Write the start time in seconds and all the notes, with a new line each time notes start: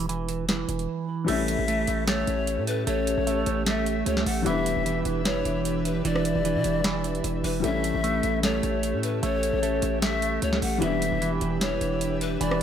Already playing: E1 E3 G3 B3 D4 E4
0.09 E3, closed hi-hat
0.29 closed hi-hat
0.49 E3, snare, closed hi-hat
0.69 E1, closed hi-hat
0.79 closed hi-hat
1.24 A1 E3 G3 A3 C#4 G4 A4 E5, closed hi-hat, crash
1.30 C#4 E4
1.48 closed hi-hat
1.59 A1
1.68 A3, closed hi-hat
1.87 A1, closed hi-hat
2.07 A3 C#5, snare, closed hi-hat
2.27 A1, closed hi-hat
2.47 closed hi-hat
2.58 A2
2.67 B4, closed hi-hat
2.87 A1 A3 C#5, closed hi-hat
3.07 closed hi-hat
3.18 A1
3.27 A3, closed hi-hat
3.46 A1, closed hi-hat
3.66 A3 E5, snare, closed hi-hat
3.86 closed hi-hat
4.06 C#2 C#5, closed hi-hat
4.17 snare
4.26 A1 F#5, open hi-hat
4.42 E1 E3 G3 B3 D4 B4 E5, closed hi-hat
4.48 D4 E4
4.66 closed hi-hat
4.76 E1
4.86 E3, closed hi-hat
5.05 E1, closed hi-hat
5.25 E3 C#5, snare, closed hi-hat
5.45 E1, closed hi-hat
5.65 closed hi-hat
5.85 B4, closed hi-hat
6.05 E1 E3 D5, closed hi-hat
6.16 cross-stick
6.25 closed hi-hat
6.35 E1
6.45 E3, closed hi-hat
6.55 B2
6.64 E1, closed hi-hat
6.84 E3, snare, closed hi-hat
7.04 closed hi-hat
7.15 closed hi-hat
7.24 E1, closed hi-hat
7.44 E1 B4, open hi-hat
7.60 A1 E3 G3 A3 C#4 G4 A4 E5, closed hi-hat
7.66 C#4 E4
7.84 closed hi-hat
7.94 A1
8.04 A3, closed hi-hat
8.23 A1, closed hi-hat
8.43 A3 C#5, snare, closed hi-hat
8.63 A1, closed hi-hat
8.83 closed hi-hat
8.94 A2
9.03 B4, closed hi-hat
9.23 A1 A3 C#5, closed hi-hat
9.43 closed hi-hat
9.53 A1
9.63 A3, closed hi-hat
9.82 A1, closed hi-hat
10.02 A3 E5, snare, closed hi-hat
10.22 closed hi-hat
10.42 C#2 C#5, closed hi-hat
10.53 snare
10.62 A1 F#5, open hi-hat
10.78 E1 E3 G3 B3 D4 B4 E5, closed hi-hat
10.84 D4 E4
11.02 closed hi-hat
11.12 E1
11.22 E3, closed hi-hat
11.41 E1, closed hi-hat
11.61 E3 C#5, snare, closed hi-hat
11.81 E1, closed hi-hat
12.01 closed hi-hat
12.21 B4, closed hi-hat
12.41 E1 E3 D5, closed hi-hat
12.51 cross-stick